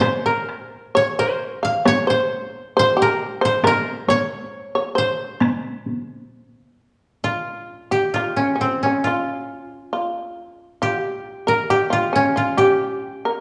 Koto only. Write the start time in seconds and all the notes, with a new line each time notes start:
Already playing: F4 G4
0.00 C5
0.26 A#4
0.97 C#5
1.19 C5
1.65 F5
1.88 C#5
2.10 C5
2.79 C5
3.02 A#4
3.45 C5
3.67 A#4
4.10 C#5
4.98 C5
7.24 F4
7.92 G4
8.14 F4
8.36 C#4
8.61 C4
8.83 C#4
9.04 F4
10.83 G4
11.48 A#4
11.70 G4
11.93 F4
12.16 C#4
12.37 F4
12.58 G4